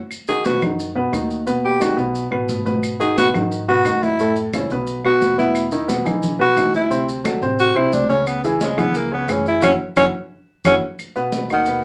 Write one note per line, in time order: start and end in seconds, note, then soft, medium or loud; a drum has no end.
0.11 high conga soft
0.11 claves medium
0.11 maracas medium
0.28 0.42 D#3 medium
0.28 0.42 D#4 medium
0.28 0.43 F#4 medium
0.28 0.47 G#4 medium
0.28 high conga soft
0.28 maracas medium
0.44 0.59 B2 medium
0.44 0.59 B3 medium
0.44 0.62 F#4 medium
0.44 0.60 B4 medium
0.44 high conga medium
0.44 maracas medium
0.62 1.09 F#2 medium
0.62 0.90 D#3 medium
0.62 0.90 D#4 medium
0.62 0.90 F#4 medium
0.62 high conga soft
0.62 low conga medium
0.62 claves medium
0.62 maracas soft
0.79 high conga soft
0.79 maracas medium
0.95 1.10 B2 medium
0.95 1.10 B3 medium
0.95 1.10 B4 medium
0.95 high conga soft
1.12 1.92 D#2 medium
1.12 1.41 D#3 medium
1.12 1.41 D#4 medium
1.12 1.41 F#4 medium
1.12 high conga medium
1.12 claves medium
1.12 maracas medium
1.30 maracas soft
1.46 1.75 B2 medium
1.46 1.75 B3 medium
1.46 1.75 B4 medium
1.46 high conga soft
1.46 maracas medium
1.65 1.83 G4 medium
1.65 high conga soft
1.80 1.94 D#3 medium
1.80 1.95 D#4 medium
1.80 1.98 F#4 medium
1.80 1.95 G4 medium
1.80 high conga medium
1.80 claves medium
1.80 maracas medium
1.96 2.29 B1 medium
1.96 2.25 B2 medium
1.96 2.25 B3 medium
1.96 2.25 B4 medium
1.96 high conga soft
1.96 maracas soft
2.15 high conga soft
2.15 maracas medium
2.31 2.48 A1 medium
2.31 2.59 B2 medium
2.31 2.60 B3 medium
2.31 2.60 B4 medium
2.31 high conga soft
2.31 claves medium
2.49 3.28 G#1 medium
2.49 high conga medium
2.49 maracas medium
2.65 2.93 B2 medium
2.65 2.94 B3 medium
2.65 2.94 B4 medium
2.65 high conga medium
2.65 maracas soft
2.83 high conga soft
2.83 claves medium
2.83 maracas medium
3.00 3.14 D#3 medium
3.00 3.14 D#4 medium
3.00 3.14 F#4 medium
3.00 3.16 G#4 medium
3.00 maracas medium
3.17 3.31 B2 medium
3.17 3.31 B3 medium
3.17 3.28 F#4 loud
3.17 3.32 B4 medium
3.17 high conga medium
3.17 maracas medium
3.34 3.81 G#2 loud
3.34 3.62 D#3 medium
3.34 3.62 D#4 medium
3.34 3.62 F#4 medium
3.34 high conga soft
3.34 low conga medium
3.34 claves medium
3.34 maracas soft
3.51 high conga soft
3.51 maracas medium
3.68 3.82 B2 medium
3.68 3.82 B3 medium
3.68 4.05 F#4 medium
3.68 3.82 B4 medium
3.68 high conga soft
3.85 4.64 F#2 loud
3.85 4.13 D#3 medium
3.85 4.13 D#4 medium
3.85 4.14 F#4 medium
3.85 high conga medium
3.85 claves medium
3.85 maracas medium
4.03 4.37 E4 medium
4.03 high conga medium
4.03 maracas soft
4.19 4.47 A2 medium
4.19 4.48 A3 medium
4.19 4.48 A4 medium
4.19 high conga soft
4.19 maracas medium
4.36 high conga soft
4.36 maracas soft
4.53 4.68 C#3 medium
4.53 4.68 C#4 medium
4.53 4.68 E4 medium
4.53 high conga medium
4.53 claves medium
4.53 maracas medium
4.70 5.17 B1 medium
4.70 4.99 B2 medium
4.70 4.99 B3 medium
4.70 4.99 B4 medium
4.70 high conga soft
4.70 maracas soft
4.87 high conga soft
4.87 maracas medium
5.04 5.32 B2 medium
5.04 5.32 B3 medium
5.04 5.36 F#4 loud
5.04 5.33 B4 medium
5.04 high conga soft
5.04 claves medium
5.21 6.00 E2 medium
5.21 high conga medium
5.21 maracas medium
5.38 5.66 B2 medium
5.38 5.66 B3 medium
5.38 5.70 E4 medium
5.38 5.66 B4 medium
5.38 high conga medium
5.38 maracas soft
5.55 high conga soft
5.55 claves medium
5.55 maracas medium
5.71 5.86 D#3 medium
5.71 5.86 D#4 medium
5.71 5.86 E4 medium
5.71 high conga soft
5.71 maracas medium
5.88 6.02 B2 medium
5.88 6.02 B3 medium
5.88 6.02 B4 medium
5.88 high conga medium
5.88 maracas medium
6.05 6.54 B1 medium
6.05 6.33 E3 medium
6.05 6.34 D#4 medium
6.05 6.34 E4 medium
6.05 high conga soft
6.05 low conga medium
6.05 claves medium
6.05 maracas soft
6.23 high conga soft
6.23 low conga medium
6.23 maracas medium
6.39 6.53 B2 medium
6.39 6.54 B3 medium
6.39 6.72 F#4 loud
6.39 6.54 B4 medium
6.39 high conga soft
6.57 7.36 D2 loud
6.57 6.85 E3 medium
6.57 6.85 D#4 medium
6.57 6.85 E4 medium
6.57 high conga medium
6.57 claves medium
6.57 maracas medium
6.74 7.06 E4 medium
6.74 high conga medium
6.74 maracas soft
6.90 7.18 C3 medium
6.90 7.19 C4 medium
6.90 7.19 C5 medium
6.90 high conga soft
6.90 maracas medium
7.09 high conga soft
7.09 maracas medium
7.24 7.38 F#3 medium
7.24 7.39 F#4 medium
7.24 7.39 A4 medium
7.24 high conga loud
7.24 claves medium
7.24 maracas medium
7.42 7.74 A1 medium
7.42 7.70 C3 medium
7.42 7.70 C4 medium
7.42 7.70 C5 medium
7.42 high conga soft
7.42 maracas soft
7.59 7.78 F#4 loud
7.59 high conga soft
7.59 maracas medium
7.75 7.92 B1 medium
7.75 8.03 C3 medium
7.75 8.04 C4 medium
7.75 7.95 E4 medium
7.75 8.04 C5 medium
7.75 high conga soft
7.75 claves medium
7.92 8.72 C#2 medium
7.92 8.08 D4 medium
7.92 high conga medium
7.92 maracas medium
8.09 8.38 C#3 medium
8.09 8.29 C#4 medium
8.09 8.38 C#4 medium
8.09 8.38 C#5 medium
8.09 high conga medium
8.09 maracas soft
8.27 8.44 B3 medium
8.27 high conga soft
8.27 claves medium
8.27 maracas medium
8.44 8.60 D#3 soft
8.44 8.58 E3 medium
8.44 8.58 E4 medium
8.44 8.58 G#4 medium
8.44 high conga soft
8.44 maracas medium
8.61 8.75 C#3 medium
8.61 8.80 G#3 medium
8.61 8.75 C#4 medium
8.61 8.76 C#5 medium
8.61 high conga loud
8.61 maracas medium
8.78 9.25 C#2 loud
8.78 9.06 E3 medium
8.78 8.98 B3 loud
8.78 9.06 E4 medium
8.78 9.06 G#4 medium
8.78 high conga soft
8.78 low conga medium
8.78 claves medium
8.78 maracas soft
8.94 9.13 A#3 medium
8.94 high conga soft
8.94 maracas medium
9.12 9.26 C#3 medium
9.12 9.33 B3 medium
9.12 9.26 C#4 medium
9.12 9.26 C#5 medium
9.12 high conga soft
9.28 9.60 F#2 loud
9.28 9.56 E3 medium
9.28 9.47 C#4 medium
9.28 9.56 E4 medium
9.28 9.57 G#4 medium
9.28 high conga medium
9.28 claves medium
9.28 maracas medium
9.46 9.63 E4 medium
9.46 maracas soft
9.62 9.75 F#1 loud
9.62 9.74 C#4 loud
9.62 9.71 C#4 loud
9.62 9.73 E4 loud
9.62 9.73 F#4 loud
9.62 low conga loud
9.62 claves loud
9.62 maracas medium
9.96 10.09 F#1 loud
9.96 10.08 C#4 medium
9.96 10.05 C#4 loud
9.96 10.08 E4 loud
9.96 10.08 F#4 loud
9.96 low conga loud
9.96 claves loud
9.96 maracas loud
10.65 10.77 F#1 loud
10.65 10.76 C#4 loud
10.65 10.74 C#4 loud
10.65 10.76 E4 loud
10.65 10.76 F#4 loud
10.65 low conga loud
10.65 claves loud
10.65 maracas loud
10.99 high conga soft
10.99 claves medium
10.99 maracas medium
11.16 11.44 B2 medium
11.16 11.44 B3 medium
11.16 11.44 B4 medium
11.16 high conga soft
11.16 maracas soft
11.32 high conga medium
11.32 maracas medium
11.50 11.84 D#2 medium
11.50 11.64 D#3 medium
11.50 11.83 D#3 medium
11.50 11.64 D#4 medium
11.50 11.64 F#4 medium
11.50 11.83 F#5 medium
11.50 high conga soft
11.50 claves medium
11.50 maracas soft
11.66 11.81 B2 medium
11.66 11.81 B3 medium
11.66 11.81 B4 medium
11.66 high conga soft
11.66 maracas medium